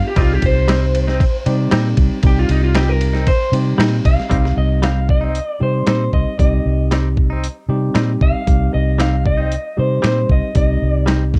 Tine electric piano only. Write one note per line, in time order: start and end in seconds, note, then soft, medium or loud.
0.00 0.10 B3 medium
0.00 0.11 D4 medium
0.00 0.11 F4 medium
0.00 0.11 G4 medium
0.17 1.12 G3 medium
0.17 1.12 C4 medium
0.17 1.12 D#4 medium
0.17 1.12 G4 medium
1.46 2.18 G3 loud
1.46 2.18 C4 medium
1.46 2.18 D#4 medium
1.46 2.18 G4 loud
2.24 3.20 G3 medium
2.24 3.20 C4 medium
2.24 3.20 D#4 medium
2.24 3.20 G4 medium
3.53 4.25 G3 medium
3.53 4.25 C4 medium
3.53 4.25 D#4 medium
3.53 4.25 G4 medium
4.31 5.27 G3 medium
4.31 5.27 C4 medium
4.31 5.27 D#4 medium
4.31 5.27 G4 medium
5.60 6.33 G3 medium
5.60 6.33 C4 medium
5.60 6.33 D#4 medium
5.60 6.33 G4 medium
6.39 7.35 G3 medium
6.39 7.36 C4 medium
6.39 7.35 D#4 medium
6.39 7.35 G4 medium
7.69 8.41 G3 medium
7.69 8.41 C4 medium
7.69 8.41 D#4 medium
7.69 8.41 G4 loud
8.47 9.43 G3 medium
8.47 9.43 C4 medium
8.47 9.43 D#4 medium
8.47 9.43 G4 medium
9.77 10.49 G3 medium
9.77 10.49 C4 medium
9.77 10.49 D#4 medium
9.77 10.49 G4 medium
10.55 11.39 G3 medium
10.55 11.39 C4 medium
10.55 11.39 D#4 medium
10.55 11.39 G4 medium